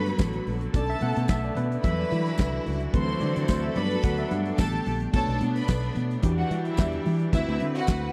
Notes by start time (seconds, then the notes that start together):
Already playing: G2 D3 F#3 A3 B3 F#4 A4 B4 B5
0.06 snare, closed hi-hat
0.18 A1, kick, snare, clap, tambourine, muted conga, high conga
0.33 closed hi-hat, muted conga, low conga
0.46 A#1, open hi-hat, high conga
0.61 closed hi-hat
0.73 B1 D3 A3 B3 C#4 A4 D5 A5, kick, closed hi-hat, muted conga
0.89 E5, closed hi-hat, muted conga
1.01 B2 F#5, closed hi-hat, high conga
1.16 B2, closed hi-hat
1.28 B1 E5, kick, snare, clap, tambourine
1.44 D5, closed hi-hat
1.55 B2 B4, closed hi-hat, high conga, low conga
1.72 closed hi-hat
1.83 E2 E3 F#3 G3 D4 E4 F#4 B4 E5 B5, kick, closed hi-hat, muted conga
1.98 D5
2.11 E3 B4, closed hi-hat, high conga
2.26 snare, closed hi-hat
2.38 C2, kick, snare, clap, tambourine, muted conga, high conga
2.53 low conga
2.66 C#2, open hi-hat, high conga
2.81 closed hi-hat
2.93 D2 D3 E3 F#3 A3 C4 E4 A4 B4 C5 C6, kick, closed hi-hat
3.08 C5
3.20 D3 D5, closed hi-hat, high conga
3.36 D3, closed hi-hat
3.48 D2 C5, kick, snare, clap, tambourine
3.63 E5, closed hi-hat, muted conga
3.76 G2 F#3 A3 B3 D4 B4 D5 B5, closed hi-hat, high conga, low conga
3.91 closed hi-hat
4.03 D2 F#5, kick, closed hi-hat, muted conga
4.17 E5, closed hi-hat, muted conga
4.31 G2 F#5, closed hi-hat, high conga
4.46 closed hi-hat
4.58 A1 D3 G3 A3 B3 G4 A4 A5, kick, snare, clap, tambourine, muted conga, high conga
4.73 muted conga, low conga
4.86 A#1, open hi-hat, high conga
5.00 closed hi-hat
5.13 B1 B2 A3 B3 D4 A4 C#5 A5, kick, crash, muted conga, low conga
5.28 B1, closed hi-hat, muted conga
5.41 B2, closed hi-hat, high conga
5.55 B4 B5, closed hi-hat
5.68 B1, kick, snare, clap, tambourine, muted conga
5.82 closed hi-hat, muted conga
5.95 B2, closed hi-hat, high conga, low conga
6.11 closed hi-hat
6.22 E2 E3 G3 D4 F#4 G4, kick, closed hi-hat, muted conga
6.38 F#4 F#5, muted conga
6.51 E3, closed hi-hat, high conga
6.65 E4 E5, closed hi-hat
6.77 E2, kick, snare, clap, tambourine, muted conga, high conga
6.92 closed hi-hat, muted conga, low conga
7.06 E3, open hi-hat, high conga
7.20 closed hi-hat
7.32 D2 D3 C4 E4 F#4 B4 E5, kick, closed hi-hat, muted conga, low conga
7.48 D2, closed hi-hat, muted conga
7.60 D3, closed hi-hat, high conga
7.75 F#4 F#5, closed hi-hat
7.87 D2, kick, snare, clap, tambourine
8.02 muted conga